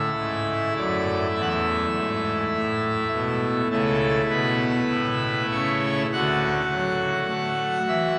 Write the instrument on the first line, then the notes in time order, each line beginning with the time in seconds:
pipe organ
Already playing: A3 E4 E5
0.18 G#2
0.76 F#2 D5
1.34 E2 E5
1.41 F#5
1.48 E5
1.94 G#2
2.53 A2
3.11 B2
3.71 C#2 C#3 A3 E4 A4
4.29 B2 B4
4.90 A2
5.51 C#3 C#5
6.12 D2 D3 A3 F#4 F#5
6.72 F#3
7.29 A3
7.87 E3 E5